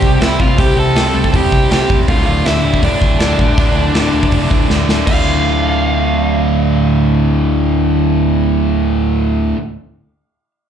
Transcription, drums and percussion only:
0, 0, Header, 1, 2, 480
1, 0, Start_track
1, 0, Key_signature, -1, "minor"
1, 0, Tempo, 373367
1, 761, Time_signature, 4, 2, 24, 8
1, 13746, End_track
2, 0, Start_track
2, 0, Title_t, "Drums"
2, 31, Note_on_c, 9, 36, 96
2, 160, Note_off_c, 9, 36, 0
2, 274, Note_on_c, 9, 46, 69
2, 283, Note_on_c, 9, 38, 126
2, 402, Note_off_c, 9, 46, 0
2, 411, Note_off_c, 9, 38, 0
2, 511, Note_on_c, 9, 36, 100
2, 640, Note_off_c, 9, 36, 0
2, 748, Note_on_c, 9, 46, 70
2, 752, Note_on_c, 9, 36, 121
2, 876, Note_off_c, 9, 46, 0
2, 881, Note_off_c, 9, 36, 0
2, 1232, Note_on_c, 9, 46, 78
2, 1241, Note_on_c, 9, 38, 118
2, 1361, Note_off_c, 9, 46, 0
2, 1370, Note_off_c, 9, 38, 0
2, 1597, Note_on_c, 9, 36, 88
2, 1719, Note_off_c, 9, 36, 0
2, 1719, Note_on_c, 9, 36, 106
2, 1722, Note_on_c, 9, 46, 75
2, 1848, Note_off_c, 9, 36, 0
2, 1851, Note_off_c, 9, 46, 0
2, 1959, Note_on_c, 9, 36, 97
2, 2087, Note_off_c, 9, 36, 0
2, 2201, Note_on_c, 9, 46, 66
2, 2210, Note_on_c, 9, 38, 122
2, 2329, Note_off_c, 9, 46, 0
2, 2338, Note_off_c, 9, 38, 0
2, 2441, Note_on_c, 9, 36, 92
2, 2570, Note_off_c, 9, 36, 0
2, 2678, Note_on_c, 9, 36, 127
2, 2680, Note_on_c, 9, 46, 74
2, 2807, Note_off_c, 9, 36, 0
2, 2809, Note_off_c, 9, 46, 0
2, 3158, Note_on_c, 9, 46, 66
2, 3167, Note_on_c, 9, 38, 123
2, 3287, Note_off_c, 9, 46, 0
2, 3296, Note_off_c, 9, 38, 0
2, 3518, Note_on_c, 9, 36, 88
2, 3632, Note_on_c, 9, 46, 69
2, 3637, Note_off_c, 9, 36, 0
2, 3637, Note_on_c, 9, 36, 116
2, 3761, Note_off_c, 9, 46, 0
2, 3766, Note_off_c, 9, 36, 0
2, 3878, Note_on_c, 9, 36, 93
2, 4006, Note_off_c, 9, 36, 0
2, 4112, Note_on_c, 9, 46, 67
2, 4121, Note_on_c, 9, 38, 119
2, 4240, Note_off_c, 9, 46, 0
2, 4249, Note_off_c, 9, 38, 0
2, 4359, Note_on_c, 9, 36, 95
2, 4488, Note_off_c, 9, 36, 0
2, 4601, Note_on_c, 9, 36, 121
2, 4602, Note_on_c, 9, 46, 77
2, 4729, Note_off_c, 9, 36, 0
2, 4730, Note_off_c, 9, 46, 0
2, 5072, Note_on_c, 9, 46, 70
2, 5081, Note_on_c, 9, 38, 112
2, 5201, Note_off_c, 9, 46, 0
2, 5210, Note_off_c, 9, 38, 0
2, 5439, Note_on_c, 9, 36, 97
2, 5544, Note_on_c, 9, 46, 74
2, 5557, Note_off_c, 9, 36, 0
2, 5557, Note_on_c, 9, 36, 112
2, 5673, Note_off_c, 9, 46, 0
2, 5686, Note_off_c, 9, 36, 0
2, 5799, Note_on_c, 9, 36, 93
2, 5928, Note_off_c, 9, 36, 0
2, 6042, Note_on_c, 9, 38, 74
2, 6171, Note_off_c, 9, 38, 0
2, 6289, Note_on_c, 9, 38, 98
2, 6417, Note_off_c, 9, 38, 0
2, 6521, Note_on_c, 9, 36, 111
2, 6523, Note_on_c, 9, 49, 104
2, 6649, Note_off_c, 9, 36, 0
2, 6651, Note_off_c, 9, 49, 0
2, 13746, End_track
0, 0, End_of_file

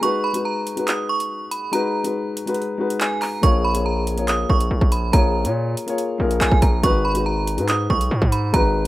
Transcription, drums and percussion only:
0, 0, Header, 1, 2, 480
1, 0, Start_track
1, 0, Tempo, 425532
1, 30, Time_signature, 4, 2, 24, 8
1, 10008, End_track
2, 0, Start_track
2, 0, Title_t, "Drums"
2, 31, Note_on_c, 9, 42, 94
2, 144, Note_off_c, 9, 42, 0
2, 386, Note_on_c, 9, 42, 88
2, 499, Note_off_c, 9, 42, 0
2, 752, Note_on_c, 9, 42, 92
2, 865, Note_off_c, 9, 42, 0
2, 870, Note_on_c, 9, 42, 66
2, 983, Note_off_c, 9, 42, 0
2, 989, Note_on_c, 9, 42, 81
2, 991, Note_on_c, 9, 39, 120
2, 1102, Note_off_c, 9, 42, 0
2, 1104, Note_off_c, 9, 39, 0
2, 1355, Note_on_c, 9, 42, 78
2, 1468, Note_off_c, 9, 42, 0
2, 1708, Note_on_c, 9, 42, 81
2, 1821, Note_off_c, 9, 42, 0
2, 1951, Note_on_c, 9, 42, 90
2, 2063, Note_off_c, 9, 42, 0
2, 2306, Note_on_c, 9, 42, 91
2, 2419, Note_off_c, 9, 42, 0
2, 2672, Note_on_c, 9, 42, 88
2, 2784, Note_off_c, 9, 42, 0
2, 2790, Note_on_c, 9, 42, 68
2, 2871, Note_off_c, 9, 42, 0
2, 2871, Note_on_c, 9, 42, 55
2, 2951, Note_off_c, 9, 42, 0
2, 2951, Note_on_c, 9, 42, 41
2, 3063, Note_off_c, 9, 42, 0
2, 3274, Note_on_c, 9, 42, 75
2, 3387, Note_off_c, 9, 42, 0
2, 3391, Note_on_c, 9, 39, 113
2, 3395, Note_on_c, 9, 42, 75
2, 3504, Note_off_c, 9, 39, 0
2, 3508, Note_off_c, 9, 42, 0
2, 3628, Note_on_c, 9, 46, 59
2, 3632, Note_on_c, 9, 39, 64
2, 3741, Note_off_c, 9, 46, 0
2, 3745, Note_off_c, 9, 39, 0
2, 3870, Note_on_c, 9, 36, 120
2, 3870, Note_on_c, 9, 42, 90
2, 3983, Note_off_c, 9, 36, 0
2, 3983, Note_off_c, 9, 42, 0
2, 4226, Note_on_c, 9, 42, 91
2, 4339, Note_off_c, 9, 42, 0
2, 4592, Note_on_c, 9, 42, 92
2, 4704, Note_off_c, 9, 42, 0
2, 4710, Note_on_c, 9, 42, 67
2, 4823, Note_off_c, 9, 42, 0
2, 4828, Note_on_c, 9, 42, 78
2, 4830, Note_on_c, 9, 39, 116
2, 4941, Note_off_c, 9, 42, 0
2, 4943, Note_off_c, 9, 39, 0
2, 5071, Note_on_c, 9, 36, 90
2, 5184, Note_off_c, 9, 36, 0
2, 5194, Note_on_c, 9, 42, 77
2, 5307, Note_off_c, 9, 42, 0
2, 5430, Note_on_c, 9, 36, 106
2, 5543, Note_off_c, 9, 36, 0
2, 5548, Note_on_c, 9, 42, 84
2, 5661, Note_off_c, 9, 42, 0
2, 5790, Note_on_c, 9, 36, 121
2, 5790, Note_on_c, 9, 42, 92
2, 5903, Note_off_c, 9, 36, 0
2, 5903, Note_off_c, 9, 42, 0
2, 6146, Note_on_c, 9, 42, 87
2, 6259, Note_off_c, 9, 42, 0
2, 6511, Note_on_c, 9, 42, 93
2, 6624, Note_off_c, 9, 42, 0
2, 6630, Note_on_c, 9, 42, 65
2, 6743, Note_off_c, 9, 42, 0
2, 6748, Note_on_c, 9, 42, 79
2, 6861, Note_off_c, 9, 42, 0
2, 7114, Note_on_c, 9, 42, 77
2, 7227, Note_off_c, 9, 42, 0
2, 7230, Note_on_c, 9, 39, 115
2, 7235, Note_on_c, 9, 42, 71
2, 7343, Note_off_c, 9, 39, 0
2, 7348, Note_off_c, 9, 42, 0
2, 7350, Note_on_c, 9, 36, 110
2, 7462, Note_off_c, 9, 36, 0
2, 7467, Note_on_c, 9, 42, 84
2, 7470, Note_on_c, 9, 36, 99
2, 7580, Note_off_c, 9, 42, 0
2, 7582, Note_off_c, 9, 36, 0
2, 7710, Note_on_c, 9, 36, 118
2, 7710, Note_on_c, 9, 42, 92
2, 7822, Note_off_c, 9, 42, 0
2, 7823, Note_off_c, 9, 36, 0
2, 8065, Note_on_c, 9, 42, 91
2, 8178, Note_off_c, 9, 42, 0
2, 8431, Note_on_c, 9, 42, 95
2, 8544, Note_off_c, 9, 42, 0
2, 8550, Note_on_c, 9, 42, 69
2, 8662, Note_off_c, 9, 42, 0
2, 8668, Note_on_c, 9, 42, 77
2, 8670, Note_on_c, 9, 39, 119
2, 8781, Note_off_c, 9, 42, 0
2, 8782, Note_off_c, 9, 39, 0
2, 8911, Note_on_c, 9, 36, 91
2, 9023, Note_off_c, 9, 36, 0
2, 9034, Note_on_c, 9, 42, 80
2, 9146, Note_off_c, 9, 42, 0
2, 9269, Note_on_c, 9, 36, 109
2, 9382, Note_off_c, 9, 36, 0
2, 9388, Note_on_c, 9, 42, 84
2, 9500, Note_off_c, 9, 42, 0
2, 9630, Note_on_c, 9, 36, 126
2, 9630, Note_on_c, 9, 42, 89
2, 9743, Note_off_c, 9, 36, 0
2, 9743, Note_off_c, 9, 42, 0
2, 10008, End_track
0, 0, End_of_file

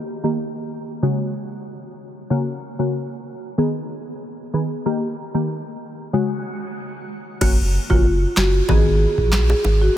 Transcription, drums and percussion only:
0, 0, Header, 1, 2, 480
1, 0, Start_track
1, 0, Key_signature, 5, "minor"
1, 0, Tempo, 638298
1, 1735, Time_signature, 4, 2, 24, 8
1, 7503, End_track
2, 0, Start_track
2, 0, Title_t, "Drums"
2, 5574, Note_on_c, 9, 36, 109
2, 5574, Note_on_c, 9, 49, 92
2, 5575, Note_on_c, 9, 60, 77
2, 5649, Note_off_c, 9, 49, 0
2, 5650, Note_off_c, 9, 36, 0
2, 5651, Note_off_c, 9, 60, 0
2, 5943, Note_on_c, 9, 36, 90
2, 6018, Note_off_c, 9, 36, 0
2, 6292, Note_on_c, 9, 60, 48
2, 6295, Note_on_c, 9, 38, 115
2, 6297, Note_on_c, 9, 39, 90
2, 6367, Note_off_c, 9, 60, 0
2, 6370, Note_off_c, 9, 38, 0
2, 6372, Note_off_c, 9, 39, 0
2, 6532, Note_on_c, 9, 60, 77
2, 6536, Note_on_c, 9, 36, 95
2, 6607, Note_off_c, 9, 60, 0
2, 6611, Note_off_c, 9, 36, 0
2, 6904, Note_on_c, 9, 36, 94
2, 6979, Note_off_c, 9, 36, 0
2, 7013, Note_on_c, 9, 38, 111
2, 7015, Note_on_c, 9, 39, 88
2, 7088, Note_off_c, 9, 38, 0
2, 7090, Note_off_c, 9, 39, 0
2, 7141, Note_on_c, 9, 60, 82
2, 7216, Note_off_c, 9, 60, 0
2, 7253, Note_on_c, 9, 61, 68
2, 7328, Note_off_c, 9, 61, 0
2, 7503, End_track
0, 0, End_of_file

